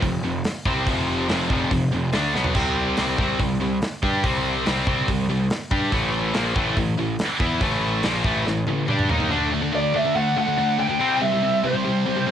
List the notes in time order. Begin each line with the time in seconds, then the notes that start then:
0.02 F1 F2 C3, kick, open hi-hat
0.24 F1 F2 C3
0.44 snare, open hi-hat
0.66 C2 C3 G3 C4, kick
0.87 F1 F2 C3 F3, kick, open hi-hat
1.29 F1 F2 C3 F3, snare, open hi-hat
1.50 F1 F2 C3 F3, kick
1.71 F1 F2 C3, kick, open hi-hat
1.92 F1 F2 C3
2.13 D2 D3 A3 D4, snare, open hi-hat
2.35 B1 B2 F#3 B3, snare
2.44 floor tom
2.55 C2 C3 G3 C4, kick, crash
2.97 C2 C3 G3 C4, snare, open hi-hat
3.18 C2 C3 G3 C4, kick
3.39 C2 C3 G3, kick, open hi-hat
3.60 C2 C3 G3
3.82 snare, open hi-hat
4.02 G2 G3 D4 G4, kick
4.23 C2 C3 G3 C4, kick, open hi-hat
4.66 C2 C3 G3 C4, snare, open hi-hat
4.87 C2 C3 G3 C4, kick
5.08 C2 C3 G3, kick, open hi-hat
5.30 C2 C3 G3
5.50 snare, open hi-hat
5.71 G2 G3 D4 G4, kick
5.92 A1 A2 E3 A3, kick, open hi-hat
6.34 A#1 A#2 F3 A#3, snare, open hi-hat
6.55 A1 A2 E3 A3, kick
6.77 A1 A2 E3, kick, open hi-hat
6.99 A1 A2 E3
7.19 snare, open hi-hat
7.40 E2 E3 B3 E4, kick
7.61 A1 A2 E3 A3, kick, open hi-hat
8.03 A#1 A#2 F3 A#3, snare, open hi-hat
8.24 A1 A2 E3 A3, kick
8.46 A1 A2 E3, snare
8.67 A1 A2 E3, high tom
8.88 G2 G3 D4 G4, mid tom
8.99 mid tom
9.08 D#2 D#3 A#3 D#4, floor tom
9.20 floor tom
9.30 D3 A3 D4
9.52 D3 A3 D4
9.61 D3 A3
9.72 D3 A3 D4 D5
9.94 D3 A3 D4 E5
10.04 D3 A3
10.15 D3 A3 D4 F#5
10.37 D3 A3 D4 F#5
10.48 D3 A3
10.58 D3 A3 D4
10.79 D3 A3 D4 G5
10.88 D3 A3
10.99 C3 G3 C4
11.20 C3 G3 C4 E5
11.32 C3 G3
11.43 C3 G3 C4
11.64 C3 G3 C4 C5
11.75 C3 G3
11.85 C3 G3 C4
12.06 C3 G3 C4
12.16 C3 G3
12.27 C3 G3 C4